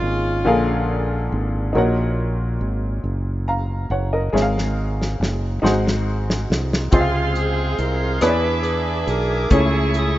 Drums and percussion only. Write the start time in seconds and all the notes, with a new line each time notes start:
4.36 snare
4.58 snare
5.02 snare
5.23 snare
5.66 snare
5.88 snare
6.30 snare
6.52 snare
6.73 snare
6.92 kick, closed hi-hat
7.35 closed hi-hat
7.78 closed hi-hat
8.21 cross-stick, closed hi-hat
8.63 closed hi-hat
9.08 closed hi-hat
9.50 kick, closed hi-hat
9.94 closed hi-hat